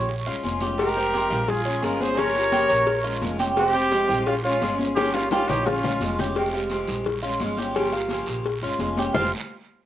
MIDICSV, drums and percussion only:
0, 0, Header, 1, 2, 480
1, 0, Start_track
1, 0, Key_signature, -4, "minor"
1, 0, Tempo, 348230
1, 1086, Time_signature, 4, 2, 24, 8
1, 13586, End_track
2, 0, Start_track
2, 0, Title_t, "Drums"
2, 122, Note_on_c, 9, 74, 74
2, 123, Note_on_c, 9, 63, 35
2, 260, Note_off_c, 9, 74, 0
2, 261, Note_off_c, 9, 63, 0
2, 366, Note_on_c, 9, 63, 35
2, 504, Note_off_c, 9, 63, 0
2, 600, Note_on_c, 9, 73, 69
2, 609, Note_on_c, 9, 63, 86
2, 737, Note_off_c, 9, 73, 0
2, 747, Note_off_c, 9, 63, 0
2, 834, Note_on_c, 9, 73, 78
2, 845, Note_on_c, 9, 63, 87
2, 972, Note_off_c, 9, 73, 0
2, 983, Note_off_c, 9, 63, 0
2, 1075, Note_on_c, 9, 74, 75
2, 1093, Note_on_c, 9, 56, 115
2, 1213, Note_off_c, 9, 74, 0
2, 1230, Note_off_c, 9, 56, 0
2, 1335, Note_on_c, 9, 63, 31
2, 1473, Note_off_c, 9, 63, 0
2, 1563, Note_on_c, 9, 73, 74
2, 1569, Note_on_c, 9, 56, 72
2, 1581, Note_on_c, 9, 63, 56
2, 1701, Note_off_c, 9, 73, 0
2, 1706, Note_off_c, 9, 56, 0
2, 1718, Note_off_c, 9, 63, 0
2, 1803, Note_on_c, 9, 73, 73
2, 1816, Note_on_c, 9, 63, 35
2, 1816, Note_on_c, 9, 64, 88
2, 1941, Note_off_c, 9, 73, 0
2, 1954, Note_off_c, 9, 63, 0
2, 1954, Note_off_c, 9, 64, 0
2, 2037, Note_on_c, 9, 74, 74
2, 2045, Note_on_c, 9, 56, 102
2, 2045, Note_on_c, 9, 63, 36
2, 2045, Note_on_c, 9, 64, 75
2, 2174, Note_off_c, 9, 74, 0
2, 2183, Note_off_c, 9, 56, 0
2, 2183, Note_off_c, 9, 63, 0
2, 2183, Note_off_c, 9, 64, 0
2, 2288, Note_on_c, 9, 63, 37
2, 2425, Note_off_c, 9, 63, 0
2, 2514, Note_on_c, 9, 73, 67
2, 2521, Note_on_c, 9, 63, 88
2, 2534, Note_on_c, 9, 56, 71
2, 2652, Note_off_c, 9, 73, 0
2, 2659, Note_off_c, 9, 63, 0
2, 2672, Note_off_c, 9, 56, 0
2, 2761, Note_on_c, 9, 73, 73
2, 2763, Note_on_c, 9, 63, 91
2, 2899, Note_off_c, 9, 73, 0
2, 2901, Note_off_c, 9, 63, 0
2, 2998, Note_on_c, 9, 74, 82
2, 3001, Note_on_c, 9, 63, 34
2, 3013, Note_on_c, 9, 56, 111
2, 3136, Note_off_c, 9, 74, 0
2, 3139, Note_off_c, 9, 63, 0
2, 3151, Note_off_c, 9, 56, 0
2, 3239, Note_on_c, 9, 63, 33
2, 3247, Note_on_c, 9, 56, 69
2, 3377, Note_off_c, 9, 63, 0
2, 3385, Note_off_c, 9, 56, 0
2, 3476, Note_on_c, 9, 73, 80
2, 3477, Note_on_c, 9, 63, 99
2, 3484, Note_on_c, 9, 56, 73
2, 3614, Note_off_c, 9, 73, 0
2, 3615, Note_off_c, 9, 63, 0
2, 3622, Note_off_c, 9, 56, 0
2, 3719, Note_on_c, 9, 73, 80
2, 3722, Note_on_c, 9, 56, 73
2, 3733, Note_on_c, 9, 63, 35
2, 3857, Note_off_c, 9, 73, 0
2, 3860, Note_off_c, 9, 56, 0
2, 3871, Note_off_c, 9, 63, 0
2, 3954, Note_on_c, 9, 56, 104
2, 3961, Note_on_c, 9, 74, 76
2, 3973, Note_on_c, 9, 63, 35
2, 4092, Note_off_c, 9, 56, 0
2, 4098, Note_off_c, 9, 74, 0
2, 4111, Note_off_c, 9, 63, 0
2, 4203, Note_on_c, 9, 63, 35
2, 4341, Note_off_c, 9, 63, 0
2, 4433, Note_on_c, 9, 63, 90
2, 4435, Note_on_c, 9, 73, 73
2, 4440, Note_on_c, 9, 56, 74
2, 4571, Note_off_c, 9, 63, 0
2, 4573, Note_off_c, 9, 73, 0
2, 4578, Note_off_c, 9, 56, 0
2, 4678, Note_on_c, 9, 63, 89
2, 4678, Note_on_c, 9, 73, 81
2, 4688, Note_on_c, 9, 56, 76
2, 4815, Note_off_c, 9, 73, 0
2, 4816, Note_off_c, 9, 63, 0
2, 4826, Note_off_c, 9, 56, 0
2, 4910, Note_on_c, 9, 63, 33
2, 4921, Note_on_c, 9, 56, 119
2, 4922, Note_on_c, 9, 74, 74
2, 5048, Note_off_c, 9, 63, 0
2, 5059, Note_off_c, 9, 56, 0
2, 5060, Note_off_c, 9, 74, 0
2, 5165, Note_on_c, 9, 63, 31
2, 5302, Note_off_c, 9, 63, 0
2, 5398, Note_on_c, 9, 56, 77
2, 5400, Note_on_c, 9, 73, 74
2, 5402, Note_on_c, 9, 63, 60
2, 5536, Note_off_c, 9, 56, 0
2, 5538, Note_off_c, 9, 73, 0
2, 5540, Note_off_c, 9, 63, 0
2, 5638, Note_on_c, 9, 63, 37
2, 5638, Note_on_c, 9, 64, 86
2, 5638, Note_on_c, 9, 73, 75
2, 5776, Note_off_c, 9, 63, 0
2, 5776, Note_off_c, 9, 64, 0
2, 5776, Note_off_c, 9, 73, 0
2, 5877, Note_on_c, 9, 74, 78
2, 5885, Note_on_c, 9, 56, 106
2, 6015, Note_off_c, 9, 74, 0
2, 6023, Note_off_c, 9, 56, 0
2, 6111, Note_on_c, 9, 63, 38
2, 6249, Note_off_c, 9, 63, 0
2, 6363, Note_on_c, 9, 63, 92
2, 6366, Note_on_c, 9, 73, 68
2, 6369, Note_on_c, 9, 56, 65
2, 6501, Note_off_c, 9, 63, 0
2, 6504, Note_off_c, 9, 73, 0
2, 6507, Note_off_c, 9, 56, 0
2, 6604, Note_on_c, 9, 63, 88
2, 6613, Note_on_c, 9, 73, 76
2, 6742, Note_off_c, 9, 63, 0
2, 6751, Note_off_c, 9, 73, 0
2, 6843, Note_on_c, 9, 74, 79
2, 6849, Note_on_c, 9, 56, 107
2, 6849, Note_on_c, 9, 60, 77
2, 6980, Note_off_c, 9, 74, 0
2, 6986, Note_off_c, 9, 56, 0
2, 6986, Note_off_c, 9, 60, 0
2, 7087, Note_on_c, 9, 63, 34
2, 7092, Note_on_c, 9, 56, 71
2, 7092, Note_on_c, 9, 60, 75
2, 7225, Note_off_c, 9, 63, 0
2, 7230, Note_off_c, 9, 56, 0
2, 7230, Note_off_c, 9, 60, 0
2, 7319, Note_on_c, 9, 73, 75
2, 7321, Note_on_c, 9, 63, 93
2, 7332, Note_on_c, 9, 56, 71
2, 7332, Note_on_c, 9, 60, 103
2, 7457, Note_off_c, 9, 73, 0
2, 7459, Note_off_c, 9, 63, 0
2, 7470, Note_off_c, 9, 56, 0
2, 7470, Note_off_c, 9, 60, 0
2, 7553, Note_on_c, 9, 73, 76
2, 7567, Note_on_c, 9, 63, 36
2, 7575, Note_on_c, 9, 56, 74
2, 7575, Note_on_c, 9, 61, 100
2, 7691, Note_off_c, 9, 73, 0
2, 7705, Note_off_c, 9, 63, 0
2, 7713, Note_off_c, 9, 56, 0
2, 7713, Note_off_c, 9, 61, 0
2, 7799, Note_on_c, 9, 74, 73
2, 7810, Note_on_c, 9, 56, 99
2, 7810, Note_on_c, 9, 61, 88
2, 7936, Note_off_c, 9, 74, 0
2, 7947, Note_off_c, 9, 56, 0
2, 7947, Note_off_c, 9, 61, 0
2, 8051, Note_on_c, 9, 61, 99
2, 8189, Note_off_c, 9, 61, 0
2, 8278, Note_on_c, 9, 63, 86
2, 8284, Note_on_c, 9, 73, 69
2, 8290, Note_on_c, 9, 56, 68
2, 8416, Note_off_c, 9, 63, 0
2, 8422, Note_off_c, 9, 73, 0
2, 8428, Note_off_c, 9, 56, 0
2, 8527, Note_on_c, 9, 63, 82
2, 8527, Note_on_c, 9, 73, 81
2, 8533, Note_on_c, 9, 56, 73
2, 8533, Note_on_c, 9, 61, 78
2, 8665, Note_off_c, 9, 63, 0
2, 8665, Note_off_c, 9, 73, 0
2, 8671, Note_off_c, 9, 56, 0
2, 8671, Note_off_c, 9, 61, 0
2, 8757, Note_on_c, 9, 74, 75
2, 8769, Note_on_c, 9, 56, 112
2, 8895, Note_off_c, 9, 74, 0
2, 8907, Note_off_c, 9, 56, 0
2, 8994, Note_on_c, 9, 63, 32
2, 9131, Note_off_c, 9, 63, 0
2, 9232, Note_on_c, 9, 73, 76
2, 9238, Note_on_c, 9, 63, 60
2, 9253, Note_on_c, 9, 56, 77
2, 9370, Note_off_c, 9, 73, 0
2, 9376, Note_off_c, 9, 63, 0
2, 9391, Note_off_c, 9, 56, 0
2, 9478, Note_on_c, 9, 73, 77
2, 9486, Note_on_c, 9, 63, 34
2, 9486, Note_on_c, 9, 64, 85
2, 9616, Note_off_c, 9, 73, 0
2, 9624, Note_off_c, 9, 63, 0
2, 9624, Note_off_c, 9, 64, 0
2, 9711, Note_on_c, 9, 74, 72
2, 9731, Note_on_c, 9, 63, 38
2, 9731, Note_on_c, 9, 64, 81
2, 9733, Note_on_c, 9, 56, 102
2, 9849, Note_off_c, 9, 74, 0
2, 9869, Note_off_c, 9, 63, 0
2, 9869, Note_off_c, 9, 64, 0
2, 9871, Note_off_c, 9, 56, 0
2, 10196, Note_on_c, 9, 73, 74
2, 10206, Note_on_c, 9, 63, 85
2, 10216, Note_on_c, 9, 56, 68
2, 10334, Note_off_c, 9, 73, 0
2, 10344, Note_off_c, 9, 63, 0
2, 10354, Note_off_c, 9, 56, 0
2, 10438, Note_on_c, 9, 73, 75
2, 10442, Note_on_c, 9, 63, 89
2, 10575, Note_off_c, 9, 73, 0
2, 10580, Note_off_c, 9, 63, 0
2, 10681, Note_on_c, 9, 74, 73
2, 10683, Note_on_c, 9, 63, 37
2, 10696, Note_on_c, 9, 56, 119
2, 10819, Note_off_c, 9, 74, 0
2, 10821, Note_off_c, 9, 63, 0
2, 10834, Note_off_c, 9, 56, 0
2, 10921, Note_on_c, 9, 63, 33
2, 10937, Note_on_c, 9, 56, 72
2, 11058, Note_off_c, 9, 63, 0
2, 11075, Note_off_c, 9, 56, 0
2, 11145, Note_on_c, 9, 63, 87
2, 11159, Note_on_c, 9, 73, 69
2, 11171, Note_on_c, 9, 56, 70
2, 11283, Note_off_c, 9, 63, 0
2, 11297, Note_off_c, 9, 73, 0
2, 11309, Note_off_c, 9, 56, 0
2, 11389, Note_on_c, 9, 73, 73
2, 11396, Note_on_c, 9, 63, 34
2, 11410, Note_on_c, 9, 56, 69
2, 11527, Note_off_c, 9, 73, 0
2, 11534, Note_off_c, 9, 63, 0
2, 11548, Note_off_c, 9, 56, 0
2, 11638, Note_on_c, 9, 74, 69
2, 11642, Note_on_c, 9, 63, 35
2, 11656, Note_on_c, 9, 56, 102
2, 11775, Note_off_c, 9, 74, 0
2, 11780, Note_off_c, 9, 63, 0
2, 11794, Note_off_c, 9, 56, 0
2, 11886, Note_on_c, 9, 63, 35
2, 12024, Note_off_c, 9, 63, 0
2, 12117, Note_on_c, 9, 63, 84
2, 12124, Note_on_c, 9, 73, 69
2, 12131, Note_on_c, 9, 56, 68
2, 12255, Note_off_c, 9, 63, 0
2, 12262, Note_off_c, 9, 73, 0
2, 12269, Note_off_c, 9, 56, 0
2, 12358, Note_on_c, 9, 63, 92
2, 12367, Note_on_c, 9, 73, 79
2, 12373, Note_on_c, 9, 56, 71
2, 12496, Note_off_c, 9, 63, 0
2, 12505, Note_off_c, 9, 73, 0
2, 12511, Note_off_c, 9, 56, 0
2, 12599, Note_on_c, 9, 64, 95
2, 12603, Note_on_c, 9, 61, 106
2, 12606, Note_on_c, 9, 74, 100
2, 12737, Note_off_c, 9, 64, 0
2, 12741, Note_off_c, 9, 61, 0
2, 12744, Note_off_c, 9, 74, 0
2, 13586, End_track
0, 0, End_of_file